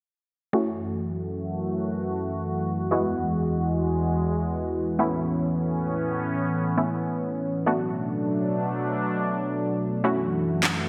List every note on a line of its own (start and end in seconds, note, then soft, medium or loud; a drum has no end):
0.53 2.89 F#2 medium
0.53 7.63 E3 medium
0.53 2.87 A3 medium
0.53 2.89 A3 medium
0.53 2.87 C#4 medium
0.53 2.88 E4 medium
0.53 4.95 F#4 medium
0.53 2.88 F#4 medium
2.91 4.97 E2 medium
2.91 4.95 G#3 medium
2.91 4.97 G#3 medium
2.91 4.95 B3 medium
2.91 4.96 E4 medium
2.91 4.96 F#4 medium
4.99 7.64 A2 medium
4.99 6.74 A3 medium
4.99 7.64 B3 medium
4.99 6.74 B3 medium
4.99 7.64 C#4 medium
4.99 6.74 C#4 medium
4.99 6.74 E4 medium
6.77 7.65 A3 medium
6.77 7.66 B3 soft
6.77 7.67 C#4 soft
6.77 7.67 E4 medium
7.66 10.02 B2 medium
7.66 10.02 F#3 medium
7.66 10.00 A3 medium
7.66 10.02 A3 medium
7.66 10.00 B3 medium
7.66 10.02 D4 medium
7.66 10.01 D4 medium
7.66 10.01 F#4 medium
10.04 10.89 F#2 medium
10.04 10.89 E3 medium
10.04 10.89 A3 medium
10.04 10.89 C#4 medium
10.04 10.89 E4 medium
10.04 10.89 F#4 medium
10.63 snare medium
10.63 clap loud